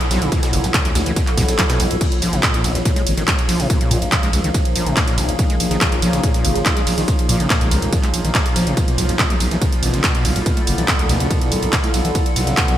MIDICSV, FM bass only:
0, 0, Header, 1, 2, 480
1, 0, Start_track
1, 0, Key_signature, -5, "minor"
1, 0, Tempo, 422535
1, 362, Time_signature, 4, 2, 24, 8
1, 14516, End_track
2, 0, Start_track
2, 0, Title_t, "FM bass"
2, 0, Program_c, 0, 39
2, 123, Note_on_c, 0, 35, 90
2, 204, Note_off_c, 0, 35, 0
2, 247, Note_on_c, 0, 35, 86
2, 323, Note_off_c, 0, 35, 0
2, 603, Note_on_c, 0, 30, 88
2, 684, Note_off_c, 0, 30, 0
2, 726, Note_on_c, 0, 35, 80
2, 802, Note_off_c, 0, 35, 0
2, 967, Note_on_c, 0, 38, 74
2, 1043, Note_off_c, 0, 38, 0
2, 1083, Note_on_c, 0, 38, 99
2, 1164, Note_off_c, 0, 38, 0
2, 1207, Note_on_c, 0, 38, 80
2, 1283, Note_off_c, 0, 38, 0
2, 1562, Note_on_c, 0, 35, 92
2, 1644, Note_off_c, 0, 35, 0
2, 1687, Note_on_c, 0, 35, 79
2, 1763, Note_off_c, 0, 35, 0
2, 2043, Note_on_c, 0, 35, 94
2, 2124, Note_off_c, 0, 35, 0
2, 2167, Note_on_c, 0, 35, 84
2, 2243, Note_off_c, 0, 35, 0
2, 2522, Note_on_c, 0, 34, 98
2, 2604, Note_off_c, 0, 34, 0
2, 2647, Note_on_c, 0, 34, 87
2, 2723, Note_off_c, 0, 34, 0
2, 2887, Note_on_c, 0, 34, 73
2, 2963, Note_off_c, 0, 34, 0
2, 3002, Note_on_c, 0, 34, 98
2, 3084, Note_off_c, 0, 34, 0
2, 3127, Note_on_c, 0, 34, 79
2, 3203, Note_off_c, 0, 34, 0
2, 3482, Note_on_c, 0, 32, 91
2, 3564, Note_off_c, 0, 32, 0
2, 3606, Note_on_c, 0, 32, 79
2, 3682, Note_off_c, 0, 32, 0
2, 3962, Note_on_c, 0, 34, 90
2, 4044, Note_off_c, 0, 34, 0
2, 4086, Note_on_c, 0, 34, 77
2, 4162, Note_off_c, 0, 34, 0
2, 4442, Note_on_c, 0, 46, 93
2, 4524, Note_off_c, 0, 46, 0
2, 4566, Note_on_c, 0, 34, 85
2, 4642, Note_off_c, 0, 34, 0
2, 4806, Note_on_c, 0, 37, 79
2, 4882, Note_off_c, 0, 37, 0
2, 4922, Note_on_c, 0, 37, 101
2, 5004, Note_off_c, 0, 37, 0
2, 5046, Note_on_c, 0, 37, 86
2, 5122, Note_off_c, 0, 37, 0
2, 5402, Note_on_c, 0, 34, 93
2, 5484, Note_off_c, 0, 34, 0
2, 5526, Note_on_c, 0, 34, 80
2, 5602, Note_off_c, 0, 34, 0
2, 5882, Note_on_c, 0, 34, 100
2, 5964, Note_off_c, 0, 34, 0
2, 6006, Note_on_c, 0, 34, 83
2, 6082, Note_off_c, 0, 34, 0
2, 6362, Note_on_c, 0, 34, 97
2, 6444, Note_off_c, 0, 34, 0
2, 6486, Note_on_c, 0, 34, 82
2, 6562, Note_off_c, 0, 34, 0
2, 6727, Note_on_c, 0, 34, 78
2, 6803, Note_off_c, 0, 34, 0
2, 6842, Note_on_c, 0, 34, 98
2, 6924, Note_off_c, 0, 34, 0
2, 6966, Note_on_c, 0, 34, 83
2, 7042, Note_off_c, 0, 34, 0
2, 7323, Note_on_c, 0, 32, 98
2, 7404, Note_off_c, 0, 32, 0
2, 7447, Note_on_c, 0, 32, 81
2, 7523, Note_off_c, 0, 32, 0
2, 7803, Note_on_c, 0, 34, 97
2, 7884, Note_off_c, 0, 34, 0
2, 7927, Note_on_c, 0, 34, 80
2, 8003, Note_off_c, 0, 34, 0
2, 8283, Note_on_c, 0, 46, 91
2, 8364, Note_off_c, 0, 46, 0
2, 8407, Note_on_c, 0, 34, 79
2, 8483, Note_off_c, 0, 34, 0
2, 8647, Note_on_c, 0, 37, 80
2, 8723, Note_off_c, 0, 37, 0
2, 8763, Note_on_c, 0, 37, 97
2, 8844, Note_off_c, 0, 37, 0
2, 8888, Note_on_c, 0, 37, 80
2, 8963, Note_off_c, 0, 37, 0
2, 9243, Note_on_c, 0, 34, 90
2, 9324, Note_off_c, 0, 34, 0
2, 9368, Note_on_c, 0, 34, 82
2, 9443, Note_off_c, 0, 34, 0
2, 9724, Note_on_c, 0, 34, 90
2, 9805, Note_off_c, 0, 34, 0
2, 9848, Note_on_c, 0, 34, 77
2, 9923, Note_off_c, 0, 34, 0
2, 10204, Note_on_c, 0, 35, 98
2, 10285, Note_off_c, 0, 35, 0
2, 10328, Note_on_c, 0, 35, 79
2, 10403, Note_off_c, 0, 35, 0
2, 10568, Note_on_c, 0, 35, 75
2, 10643, Note_off_c, 0, 35, 0
2, 10683, Note_on_c, 0, 35, 99
2, 10764, Note_off_c, 0, 35, 0
2, 10807, Note_on_c, 0, 35, 86
2, 10883, Note_off_c, 0, 35, 0
2, 11163, Note_on_c, 0, 33, 95
2, 11244, Note_off_c, 0, 33, 0
2, 11288, Note_on_c, 0, 33, 81
2, 11363, Note_off_c, 0, 33, 0
2, 11643, Note_on_c, 0, 35, 91
2, 11724, Note_off_c, 0, 35, 0
2, 11768, Note_on_c, 0, 35, 83
2, 11843, Note_off_c, 0, 35, 0
2, 12123, Note_on_c, 0, 30, 93
2, 12204, Note_off_c, 0, 30, 0
2, 12248, Note_on_c, 0, 35, 86
2, 12323, Note_off_c, 0, 35, 0
2, 12487, Note_on_c, 0, 38, 77
2, 12563, Note_off_c, 0, 38, 0
2, 12603, Note_on_c, 0, 38, 94
2, 12684, Note_off_c, 0, 38, 0
2, 12728, Note_on_c, 0, 38, 82
2, 12803, Note_off_c, 0, 38, 0
2, 13083, Note_on_c, 0, 35, 95
2, 13164, Note_off_c, 0, 35, 0
2, 13207, Note_on_c, 0, 35, 84
2, 13283, Note_off_c, 0, 35, 0
2, 13563, Note_on_c, 0, 35, 95
2, 13644, Note_off_c, 0, 35, 0
2, 13687, Note_on_c, 0, 35, 84
2, 13763, Note_off_c, 0, 35, 0
2, 14042, Note_on_c, 0, 35, 93
2, 14124, Note_off_c, 0, 35, 0
2, 14167, Note_on_c, 0, 35, 85
2, 14243, Note_off_c, 0, 35, 0
2, 14407, Note_on_c, 0, 35, 75
2, 14483, Note_off_c, 0, 35, 0
2, 14516, End_track
0, 0, End_of_file